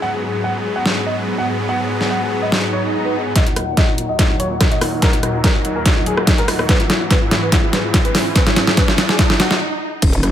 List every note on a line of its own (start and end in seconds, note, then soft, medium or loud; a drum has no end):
0.00 3.32 G#2 medium
0.00 3.32 F#3 medium
0.00 3.36 B3 medium
0.00 3.32 B3 medium
0.00 1.18 C#4 medium
0.00 4.51 G#4 medium
0.00 0.08 F#5 medium
0.13 0.19 G#4 medium
0.23 0.29 G#4 medium
0.34 0.40 G#4 medium
0.34 9.61 F#5 medium
0.44 0.50 F#5 medium
0.55 0.61 G#4 medium
0.65 0.71 G#4 medium
0.76 0.81 F#5 medium
0.86 0.92 G#4 medium
0.86 snare loud
0.97 1.02 G#4 medium
1.06 1.13 D#5 medium
1.17 1.23 G#4 medium
1.27 1.33 G#4 medium
1.38 1.44 F#5 medium
1.48 1.54 G#4 medium
1.59 1.65 G#4 medium
1.69 1.75 F#5 medium
1.80 1.85 G#4 medium
1.90 1.96 G#4 medium
2.01 2.06 G#4 medium
2.01 snare soft
2.11 2.17 F#5 medium
2.22 2.27 G#4 medium
2.31 2.38 G#4 medium
2.42 2.48 D#5 medium
2.52 snare loud
2.52 swell medium
2.63 2.69 G#4 medium
2.73 2.79 C#5 medium
2.84 2.90 G#4 medium
2.94 3.00 G#4 medium
3.05 3.11 B4 medium
3.15 3.21 G#4 medium
3.26 3.31 G#4 medium
3.36 6.66 D#2 medium
3.36 6.66 A#2 medium
3.36 9.57 F#3 loud
3.36 6.69 D#4 medium
3.36 3.42 D#5 medium
3.36 kick medium
3.36 snare soft
3.36 closed hi-hat medium
3.36 riser medium
3.47 3.52 D#4 medium
3.47 closed hi-hat soft
3.56 3.63 D#4 medium
3.56 cross-stick soft
3.56 closed hi-hat medium
3.67 3.73 D#4 medium
3.75 7.81 A#4 medium
3.75 3.83 D#5 medium
3.75 kick loud
3.75 snare soft
3.75 closed hi-hat medium
3.88 3.94 D#4 medium
3.98 4.04 D#4 medium
3.98 closed hi-hat soft
4.09 4.15 D#5 medium
4.19 4.25 D#4 medium
4.19 kick medium
4.19 snare medium
4.19 closed hi-hat medium
4.30 4.35 D#4 medium
4.40 4.46 C#5 medium
4.40 closed hi-hat medium
4.51 4.56 D#4 medium
4.61 4.67 D#4 medium
4.61 kick loud
4.61 cross-stick soft
4.61 snare medium
4.61 closed hi-hat medium
4.72 4.77 D#5 medium
4.72 closed hi-hat soft
4.81 4.88 D#4 medium
4.81 cross-stick medium
4.81 open hi-hat medium
4.92 4.98 D#4 medium
5.02 5.08 A#4 medium
5.02 kick loud
5.02 snare medium
5.02 closed hi-hat medium
5.13 5.19 D#4 medium
5.13 closed hi-hat soft
5.23 5.29 D#4 medium
5.23 cross-stick soft
5.23 closed hi-hat medium
5.34 5.40 D#4 medium
5.44 5.50 A#4 medium
5.44 kick loud
5.44 snare medium
5.44 closed hi-hat medium
5.55 5.60 D#4 medium
5.65 5.71 D#4 medium
5.65 closed hi-hat medium
5.76 5.81 A#4 medium
5.86 5.92 D#4 medium
5.86 kick loud
5.86 snare medium
5.86 closed hi-hat medium
5.97 6.02 D#4 medium
6.06 6.13 G#4 medium
6.06 closed hi-hat medium
6.17 6.23 D#4 medium
6.17 cross-stick medium
6.27 6.33 D#4 medium
6.27 kick loud
6.27 snare medium
6.27 closed hi-hat medium
6.38 6.44 A#4 medium
6.38 closed hi-hat soft
6.48 6.54 D#4 medium
6.48 cross-stick medium
6.48 open hi-hat medium
6.59 6.65 D#4 medium
6.59 cross-stick medium
6.69 9.58 G#2 medium
6.69 9.58 E3 medium
6.69 9.61 E4 medium
6.69 6.75 B4 loud
6.69 kick loud
6.69 snare medium
6.69 closed hi-hat medium
6.80 6.85 E4 medium
6.80 closed hi-hat soft
6.90 6.96 E4 medium
6.90 snare medium
6.90 closed hi-hat medium
7.01 7.06 E4 medium
7.07 9.61 G#4 medium
7.07 7.17 B4 medium
7.07 kick medium
7.07 snare medium
7.07 closed hi-hat medium
7.22 7.27 E4 medium
7.31 7.38 E4 medium
7.31 snare medium
7.31 closed hi-hat medium
7.42 7.48 B4 medium
7.52 7.58 E4 medium
7.52 kick loud
7.52 snare medium
7.52 closed hi-hat medium
7.63 7.69 E4 medium
7.73 7.79 B4 medium
7.73 snare medium
7.73 closed hi-hat medium
7.84 7.90 E4 medium
7.94 8.00 E4 medium
7.94 kick loud
7.94 snare medium
7.94 closed hi-hat medium
8.05 8.10 B4 loud
8.05 closed hi-hat soft
8.15 8.21 E4 medium
8.15 snare medium
8.15 open hi-hat medium
8.26 8.31 E4 medium
8.36 8.42 B4 medium
8.36 kick loud
8.36 snare medium
8.36 closed hi-hat medium
8.46 8.52 E4 medium
8.46 snare medium
8.46 closed hi-hat soft
8.56 8.63 E4 medium
8.56 snare medium
8.56 closed hi-hat soft
8.67 8.73 E4 medium
8.67 snare medium
8.77 8.83 B4 medium
8.77 kick medium
8.77 snare medium
8.77 closed hi-hat medium
8.88 8.94 E4 medium
8.88 snare medium
8.98 9.04 E4 medium
8.98 snare loud
8.98 closed hi-hat medium
9.09 9.15 G#4 medium
9.09 snare medium
9.19 9.25 E4 medium
9.19 kick loud
9.19 snare loud
9.19 closed hi-hat medium
9.30 9.35 E4 medium
9.30 snare medium
9.40 9.46 F#4 medium
9.40 snare loud
9.40 closed hi-hat medium
9.51 9.56 E4 medium
9.51 snare loud
10.02 10.22 D#1 loud
10.02 10.31 D#3 medium
10.02 10.31 C#4 medium
10.02 10.31 F#4 loud
10.02 kick loud
10.02 closed hi-hat medium
10.02 crash loud
10.02 sub drop medium
10.13 closed hi-hat soft
10.23 10.31 F#1 loud
10.23 cross-stick medium
10.23 closed hi-hat medium